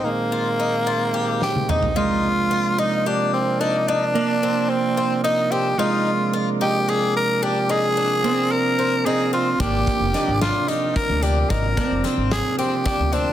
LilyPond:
<<
  \new Staff \with { instrumentName = "Tenor saxophone" } { \time 7/8 \key aes \lydian \tempo 4 = 110 bes2~ bes8 g'8 ees'8 | f'4. ees'8 d'8 c'8 ees'8 | d'4. c'4 ees'8 g'8 | f'4 r8 g'8 aes'8 bes'8 g'8 |
aes'4. bes'4 aes'8 f'8 | g'4. f'8 ees'8 bes'8 g'8 | bes'4 r8 aes'8 g'8 g'8 d'8 | }
  \new Staff \with { instrumentName = "Twelve-string acoustic guitar" } { \time 7/8 \key aes \lydian r8 f'8 ees'8 f'8 g'4 ees'8 | ees'4 f'8 ees'8 g'4 d'8 | ees'8 d'8 c'4 c'8 ees'8 c'8 | ees'4 f'8 ees'8 g'4 d'8 |
ees'8 d'8 c'4 c'8 ees'8 c'8 | d'4 ees'8 d'8 g'4 d'8 | ees'8 d'8 c'4 c'8 d'8 c'8 | }
  \new Staff \with { instrumentName = "Clean electric guitar" } { \time 7/8 \key aes \lydian r2. r8 | aes2.~ aes8~ | aes8 bes2. | aes2.~ aes8~ |
aes4 c'4. c'4 | bes4 d'2~ d'8~ | d'8 c'2. | }
  \new Staff \with { instrumentName = "Tonewheel organ" } { \clef bass \time 7/8 \key aes \lydian <bes, ees aes c'>2.~ <bes, ees aes c'>8 | <c f bes d'>2.~ <c f bes d'>8~ | <c f bes d'>2.~ <c f bes d'>8 | <c f bes d'>2.~ <c f bes d'>8~ |
<c f bes d'>2.~ <c f bes d'>8 | <c f bes d'>2.~ <c f bes d'>8~ | <c f bes d'>2.~ <c f bes d'>8 | }
  \new Staff \with { instrumentName = "Upright bass" } { \clef bass \time 7/8 \key aes \lydian r2. r8 | r2. r8 | r2. r8 | r2. r8 |
r2. r8 | aes,,8 r16 f,,16 r16 aes,,8 r4 d,8. | aes,,8 r16 f,,16 r16 aes,,8 r4 d,8. | }
  \new DrumStaff \with { instrumentName = "Drums" } \drummode { \time 7/8 r4. r4 sn16 tommh16 toml16 tomfh16 | r4. r4 r4 | r4. r4 r4 | r4. r4 r4 |
r4. r4 r4 | <hh bd>8 <hh bd>8 <hh sn>8 <hh sn>8 hh8 <hh bd>8 hh8 | <hh bd>8 <hh bd>8 <hh sn>8 <hh sn>8 hh8 <hh bd>8 hh8 | }
>>